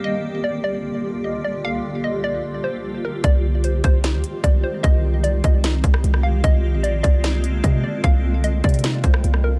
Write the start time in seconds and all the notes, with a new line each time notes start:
Already playing: A#3 G4
0.04 C2 D3 G3 F4 D#5
0.44 D5
0.64 D5
1.24 D#5
1.44 D5
1.65 F5
2.04 D#5
2.24 D5
2.64 C5
3.05 A#4
3.24 C2 D#3 G#3 C4 D5, kick, closed hi-hat
3.64 C5, closed hi-hat
3.84 C2 C5, kick, closed hi-hat
4.04 snare, closed hi-hat
4.14 D2
4.24 closed hi-hat
4.44 C2 D5, kick, closed hi-hat
4.64 C5
4.83 C2 D#5, kick, closed hi-hat
5.24 D5, closed hi-hat
5.44 C2 D#5, kick, closed hi-hat
5.64 snare, closed hi-hat
5.84 C2, kick, closed hi-hat
5.94 cross-stick
6.04 C2, closed hi-hat
6.14 cross-stick
6.23 F5
6.44 C2 D3 A#3 D#5, kick, closed hi-hat
6.74 A#1
6.83 D5, closed hi-hat
7.03 C2 D5, kick, closed hi-hat
7.24 snare, closed hi-hat
7.44 closed hi-hat
7.64 C3 D#5, kick, closed hi-hat
7.84 D5
8.04 C2 F5, kick, closed hi-hat
8.44 D#5, closed hi-hat
8.64 C3 D5, kick, closed hi-hat
8.69 closed hi-hat
8.74 closed hi-hat
8.79 closed hi-hat
8.84 snare, closed hi-hat
9.04 C2 C5, kick, closed hi-hat
9.14 cross-stick
9.24 C2, closed hi-hat
9.34 cross-stick
9.44 A#4